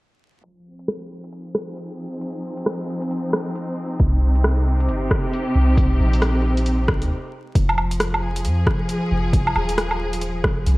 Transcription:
0.43 string section F3, closed hi-hat
0.69 string section C4
0.79 closed hi-hat
0.88 cross-stick, closed hi-hat
1.02 string section D#4 G#4
1.24 closed hi-hat
1.33 closed hi-hat
1.55 cross-stick
1.77 closed hi-hat
2.21 closed hi-hat
2.57 closed hi-hat
2.66 cross-stick, closed hi-hat
3.02 closed hi-hat
3.11 closed hi-hat
3.33 cross-stick
3.55 closed hi-hat
3.99 808-style bass C2, string section C3, kick, closed hi-hat
4.35 closed hi-hat
4.44 cross-stick, closed hi-hat
4.73 string section G4
4.80 closed hi-hat
4.88 808-style bass G1, closed hi-hat
5.11 kick, cross-stick
5.33 closed hi-hat
5.55 808-style bass C2
5.77 kick, closed hi-hat
6.00 808-style bass A#1
6.13 closed hi-hat
6.22 cross-stick, closed hi-hat
6.57 closed hi-hat
6.66 closed hi-hat
6.88 kick, cross-stick
7.02 808-style bass D#2, closed hi-hat
7.55 808-style bass F1, string section F3, kick, closed hi-hat
7.69 low woodblock
7.78 low woodblock
7.91 closed hi-hat
8.00 cross-stick, closed hi-hat
8.14 string section G#4, low woodblock
8.36 closed hi-hat
8.45 808-style bass F2, closed hi-hat
8.67 kick, cross-stick
8.89 closed hi-hat
9.11 808-style bass F1
9.33 kick, closed hi-hat
9.47 low woodblock
9.56 808-style bass D#1, low woodblock
9.69 closed hi-hat
9.78 cross-stick, closed hi-hat
9.91 low woodblock
10.13 closed hi-hat
10.21 closed hi-hat
10.44 kick, cross-stick
10.66 808-style bass C2, closed hi-hat

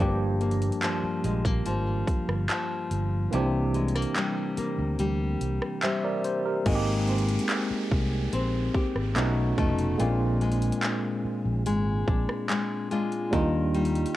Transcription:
Already playing: tine electric piano F3
0.00 fingered electric bass G1, nylon-string guitar G2 D4, tine electric piano G3 A#3 D4 G4
0.41 nylon-string guitar A#3, closed hi-hat
0.51 closed hi-hat
0.62 closed hi-hat
0.72 closed hi-hat
0.83 nylon-string guitar F3, clap, closed hi-hat
1.04 muted fingered electric bass stroke
1.24 fingered electric bass A#1, nylon-string guitar G#3, closed hi-hat
1.45 nylon-string guitar A#3, kick
1.66 fingered electric bass G#1, nylon-string guitar F3, closed hi-hat
2.08 kick, closed hi-hat
2.28 fingered electric bass G1, cross-stick
2.49 nylon-string guitar F3, clap, closed hi-hat
2.91 fingered electric bass G1, closed hi-hat
3.31 fingered electric bass C2, nylon-string guitar C3 E4, tine electric piano E3 A#3 C4 D4, closed hi-hat
3.35 tine electric piano G4
3.74 nylon-string guitar G#3, closed hi-hat
3.88 closed hi-hat
3.95 nylon-string guitar A#3, cross-stick
4.02 closed hi-hat
4.16 nylon-string guitar G3, clap, closed hi-hat
4.57 nylon-string guitar A#3, muted fingered electric bass stroke, closed hi-hat
4.78 fingered electric bass D2
4.99 fingered electric bass D2, nylon-string guitar G3, closed hi-hat
5.41 fingered electric bass C2, closed hi-hat
5.62 cross-stick
5.83 nylon-string guitar G3, tine electric piano C5 E5, clap, closed hi-hat
6.04 tine electric piano A#4 D5
6.24 tine electric piano C5, closed hi-hat
6.46 tine electric piano G4 A#4
6.64 fingered electric bass G#1, tine electric piano G#3 A#3 C4 D#4, nylon-string guitar G#3, kick, closed hi-hat, crash, downlifter
6.69 tine electric piano F#4
6.75 tine electric piano G4
7.08 nylon-string guitar C4, closed hi-hat
7.18 closed hi-hat
7.28 closed hi-hat
7.39 closed hi-hat
7.49 clap, closed hi-hat
7.70 muted fingered electric bass stroke
7.91 fingered electric bass C2, kick
8.33 fingered electric bass A#1, nylon-string guitar C4, closed hi-hat
8.74 nylon-string guitar G4, kick
8.95 fingered electric bass G#1, cross-stick
9.15 fingered electric bass B1, nylon-string guitar B2, tine electric piano A3 B3 C#4 D#4 F#4, clap, closed hi-hat
9.58 fingered electric bass F1, nylon-string guitar A3 C#4 D#4, kick, closed hi-hat
9.78 closed hi-hat
9.97 fingered electric bass A#1, nylon-string guitar A#2, tine electric piano G#3 A#3 C4 D4, closed hi-hat
10.01 tine electric piano F4
10.41 nylon-string guitar G#3, closed hi-hat
10.52 closed hi-hat
10.62 closed hi-hat
10.72 closed hi-hat
10.83 clap, closed hi-hat
11.25 muted fingered electric bass stroke
11.45 fingered electric bass A#1
11.66 fingered electric bass G#1, nylon-string guitar G#3, closed hi-hat
12.08 fingered electric bass A#1, nylon-string guitar D4, kick
12.29 cross-stick
12.50 nylon-string guitar G#3, clap, closed hi-hat
12.91 nylon-string guitar G#3 D4 F4, closed hi-hat
13.12 closed hi-hat
13.31 fingered electric bass D#2, nylon-string guitar D#3, tine electric piano G3 A#3 D4 D#4, kick, closed hi-hat
13.35 tine electric piano F4
13.74 nylon-string guitar G3, closed hi-hat
13.85 closed hi-hat
13.95 closed hi-hat
14.06 closed hi-hat

